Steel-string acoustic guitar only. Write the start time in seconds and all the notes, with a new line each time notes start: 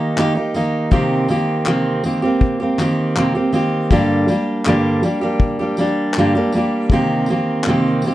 Already playing: D#3 A#3 D#4 G4
0.17 D#3 A#3 D#4 G4
0.35 A#3 D#4 G4
0.54 D#3 A#3 D#4 G4
0.91 C3 D#3 A#3 C4 G4
1.28 D#3 A#3 C4 G4
1.66 C3 D#3 A#3 C4 G4
2.04 D#3 A#3 C4 G4
2.22 A#3 C4 G4
2.60 A#3 C4 G4
2.78 D#3 A#3 C4 G4
3.16 C3 D#3 A#3 C4 G4
3.35 A#3 C4 G4
3.53 D#3 A#3 C4 G4
3.90 G2 D3 G3 A#3 D4 G4
4.28 G3 A#3 D4 G4
4.66 G2 D3 G3 A#3 D4 G4
5.03 G3 A#3 D4 G4
5.21 G3 A#3 D4 G4
5.59 G3 A#3 D4 G4
5.78 G3 A#3 D4 G4
6.17 G2 D3 G3 A#3 D4 G4
6.35 G3 A#3 D4 G4
6.54 G3 A#3 D4 G4
6.91 C3 D#3 A#3 C4 G4
7.29 D#3 A#3 C4 G4
7.67 C3 D#3 A#3 C4 G4
8.04 D#3 A#3 C4 G4